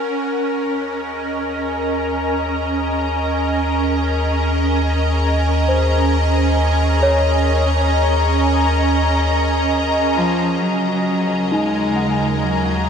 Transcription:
Already playing: sub bass D#2, ambient pad C#4 A#4, violin section G#4 G#5, celesta F#5
0.41 ambient pad D#5
0.87 ambient pad A#5
5.68 celesta C5
7.03 celesta C#5
10.15 cello F3
10.61 sub bass D#2, ambient pad C#3, cello F#3, violin section G#4 G#5
10.83 ambient pad A#4
11.51 cello G#3, celesta D#4
11.96 celesta F#5
12.43 cello F#3

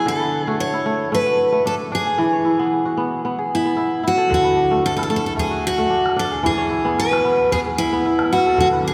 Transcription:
Already playing: kora E3 B3 E4 F#4 G#4 B4 C#5 D5
0.06 kora D3, steel-string acoustic guitar A4
0.20 kora B4
0.44 kora A3 F#4, steel-string acoustic guitar G#4
0.60 steel-string acoustic guitar C#5
0.74 kora E4
0.86 kora A3
1.12 kora A3, steel-string acoustic guitar B4
1.26 kora F#4
1.52 kora A3
1.66 kora D4, steel-string acoustic guitar A4
1.92 kora D4, steel-string acoustic guitar G#4
2.06 kora G#4
2.18 kora E3
2.33 kora C#5
2.45 kora E4
2.59 kora B3 G#4
2.85 kora F#4
2.97 kora B3
3.25 kora B3
3.38 kora G#4
3.55 steel-string acoustic guitar E4
3.65 kora B3
3.77 kora E4
4.03 kora E4
4.08 steel-string acoustic guitar F#4
4.18 kora A4
4.30 kora D3, calabash thump
4.34 steel-string acoustic guitar F#4
4.44 kora B4
4.56 kora D4
4.71 kora A3, calabash click
4.86 steel-string acoustic guitar A4, calabash click
4.97 kora E4, steel-string acoustic guitar A4, calabash click
5.03 steel-string acoustic guitar A4
5.10 kora A3, steel-string acoustic guitar A4
5.16 steel-string acoustic guitar A4
5.25 steel-string acoustic guitar A4, calabash click
5.36 kora A3, steel-string acoustic guitar G#4, calabash thump
5.51 kora F#4
5.67 steel-string acoustic guitar F#4
5.78 kora A3
5.90 kora D4
6.06 calabash click
6.16 kora D4, steel-string acoustic guitar A4
6.31 kora G#4
6.43 kora E3, steel-string acoustic guitar G#4, calabash thump
6.57 kora C#5
6.70 kora E4
6.85 kora B3 G#4, calabash click
6.98 steel-string acoustic guitar B4, calabash click
7.12 kora F#4, calabash click
7.24 kora B3
7.40 calabash click
7.52 kora B3, steel-string acoustic guitar G#4, calabash thump
7.66 kora G#4
7.78 steel-string acoustic guitar E4
7.93 kora B3
8.06 kora E4
8.19 calabash click
8.32 kora E4, steel-string acoustic guitar F#4
8.46 kora A4
8.58 kora D3, steel-string acoustic guitar F#4, calabash thump
8.72 kora B4
8.84 kora D4, steel-string acoustic guitar G#4

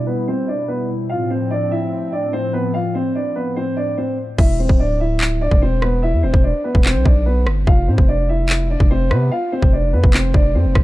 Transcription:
Already playing: analog synth pad B2 G3 E4
0.07 grand piano B3 B4
0.28 grand piano C4 C5
0.48 grand piano D4 D5
0.68 grand piano B3 B4
1.10 analog synth pad A2 F3 C4, grand piano F4 F5
1.30 grand piano C4 C5
1.51 grand piano D4 D5
1.71 grand piano E4 E5
2.12 grand piano D4 D5
2.33 grand piano C4 C5
2.53 grand piano B3 B4
2.74 grand piano F4 F5
2.95 grand piano C4 C5
3.15 grand piano D4 D5
3.36 grand piano B3 B4
3.56 grand piano C4 C5
3.77 grand piano D4 D5
3.97 grand piano C4 C5
4.38 808-style bass E1, grand piano E4 E5, kick, crash
4.59 grand piano C4 C5
4.69 808-style bass D1, kick
4.80 grand piano D4 D5
5.00 grand piano E4 E5
5.21 clap
5.41 grand piano D4 D5
5.51 808-style bass E1, kick
5.62 grand piano C4 C5
5.82 grand piano B3 B4, cross-stick
6.03 grand piano E4 E5
6.13 808-style bass E2
6.23 808-style bass E1, grand piano C4 C5
6.34 808-style bass E1, kick
6.44 grand piano D4 D5
6.64 grand piano B3 B4
6.75 808-style bass E1, kick
6.85 grand piano C4 C5, clap
6.95 808-style bass B1
7.05 808-style bass B1, grand piano D4 D5, kick
7.26 grand piano B3 B4
7.47 808-style bass G1, cross-stick
7.67 808-style bass F1, grand piano F4 F5, kick
7.88 808-style bass A2, grand piano C4 C5
7.98 808-style bass F1, kick
8.08 grand piano D4 D5
8.29 grand piano E4 E5
8.49 clap
8.70 grand piano D4 D5
8.80 808-style bass F1, kick
8.91 grand piano C4 C5
9.11 808-style bass C3, grand piano B3 B4, cross-stick
9.31 grand piano F4 F5
9.52 grand piano C4 C5
9.62 808-style bass F1, kick
9.73 grand piano D4 D5
9.93 808-style bass F2, grand piano B3 B4
10.04 808-style bass F1, kick
10.14 grand piano C4 C5, clap
10.34 808-style bass F1, grand piano D4 D5, kick
10.55 808-style bass F2, grand piano C4 C5
10.65 808-style bass F1
10.75 808-style bass F1, kick, cross-stick

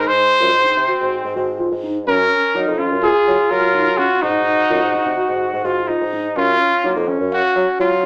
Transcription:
Already playing: bassoon G#2, flugelhorn G#3, tine electric piano D#4
0.07 trumpet C5
0.40 bassoon F#2, tine electric piano F4
0.53 bassoon G#2
0.57 flugelhorn B3
0.64 flugelhorn C4, tine electric piano D#4
0.77 bassoon C3
0.88 tine electric piano F#4
1.01 bassoon G#2
1.24 bassoon G#2
1.35 bassoon G#2, tine electric piano F#4
1.59 tine electric piano F4
1.71 bassoon G#2
1.84 tine electric piano D#4
2.07 bassoon F#2, tine electric piano C#4, flugelhorn C#4, trumpet A#4
2.55 bassoon F#3, tine electric piano D#4, flugelhorn D#4
2.68 bassoon F2
2.78 tine electric piano C#4, flugelhorn F4
2.92 bassoon F#2
3.03 tine electric piano F4, trumpet G#4
3.27 bassoon F#3
3.50 bassoon F#3, tine electric piano F4, trumpet A#4
3.75 tine electric piano D#4
3.97 tine electric piano C#4, trumpet F#4
4.22 bassoon G#2, trumpet D#4, tine electric piano D#4, flugelhorn F#4
4.70 bassoon F#2, tine electric piano F4
4.82 bassoon G#2
4.94 tine electric piano D#4
5.05 bassoon C3
5.18 tine electric piano F#4
5.29 bassoon G#2
5.53 bassoon G#2
5.64 bassoon G#2, flugelhorn F4, tine electric piano F#4
5.88 flugelhorn D#4, tine electric piano F4
6.01 bassoon G#2
6.13 tine electric piano D#4
6.36 bassoon F#2, flugelhorn C#4, tine electric piano C#4, trumpet F4
6.84 bassoon F#3, flugelhorn A#3, tine electric piano D#4
6.96 bassoon F2
7.08 tine electric piano C#4, flugelhorn C#4
7.20 bassoon F#2
7.32 trumpet F#4, tine electric piano F5
7.55 bassoon F#3
7.79 bassoon F#3, tine electric piano F4, trumpet F4

